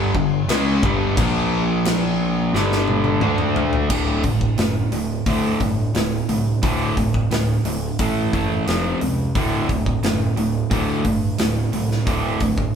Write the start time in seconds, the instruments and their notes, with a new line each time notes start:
Already playing: picked electric bass G1, distorted electric guitar G2 D3 G3
0.14 picked electric bass G1, distorted electric guitar G2 D3, kick
0.48 picked electric bass C#2, distorted electric guitar C#3 G#3 C#4, snare, crash
0.83 picked electric bass G1, distorted electric guitar G2 D3 G3, kick
1.17 picked electric bass A#1, distorted electric guitar A#2 F3 A#3, kick, crash
1.85 snare, crash
2.54 picked electric bass G1, distorted electric guitar G2 D3 G3, snare
2.72 snare
2.88 high tom
3.04 high tom
3.21 picked electric bass D2, distorted electric guitar D3 A3 D4, mid tom
3.38 mid tom
3.56 floor tom
3.73 floor tom
3.90 picked electric bass D1, distorted electric guitar D2 A2 D3, kick, crash
4.24 picked electric bass D1, distorted electric guitar D2 A2, kick, open hi-hat
4.41 kick
4.58 picked electric bass F#1, distorted electric guitar D2 A2, snare, open hi-hat
4.92 picked electric bass D1, distorted electric guitar D2 A2, open hi-hat
5.26 picked electric bass D2, distorted electric guitar D2 A2 D3, kick, open hi-hat
5.60 picked electric bass G1, distorted electric guitar D2 A2, kick, open hi-hat
5.94 picked electric bass D1, distorted electric guitar D2 A2, snare, open hi-hat
6.29 picked electric bass C2, distorted electric guitar D2 A2, open hi-hat
6.63 picked electric bass D1, distorted electric guitar D2 A2 D3, kick, open hi-hat
6.97 picked electric bass D1, distorted electric guitar D2 A2, kick, open hi-hat
7.14 kick
7.31 picked electric bass D1, distorted electric guitar D2 A2, snare, open hi-hat
7.65 picked electric bass D1, distorted electric guitar D2 A2, open hi-hat
7.99 picked electric bass A1, distorted electric guitar A2 E3 A3, kick, open hi-hat
8.33 picked electric bass F#1, distorted electric guitar A2 E3 A3, kick, open hi-hat
8.68 picked electric bass F1, distorted electric guitar F2 C3 F3, snare, open hi-hat
9.01 picked electric bass C#2, distorted electric guitar F2 C3, open hi-hat
9.35 picked electric bass D1, distorted electric guitar D2 A2 D3, kick, open hi-hat
9.69 picked electric bass D1, distorted electric guitar D2 A2, kick, open hi-hat
9.86 kick
10.03 picked electric bass F#1, distorted electric guitar D2 A2, snare, open hi-hat
10.37 picked electric bass D1, distorted electric guitar D2 A2, open hi-hat
10.71 distorted electric guitar D2 A2 D3, picked electric bass D2, kick, open hi-hat
11.05 picked electric bass G1, distorted electric guitar D2 A2, kick, open hi-hat
11.39 picked electric bass D1, distorted electric guitar D2 A2, snare, open hi-hat
11.73 picked electric bass C2, distorted electric guitar D2 A2, open hi-hat
11.91 snare
12.07 picked electric bass D1, distorted electric guitar D2 A2 D3, kick, open hi-hat
12.40 picked electric bass D1, distorted electric guitar D2 A2, kick, open hi-hat
12.58 kick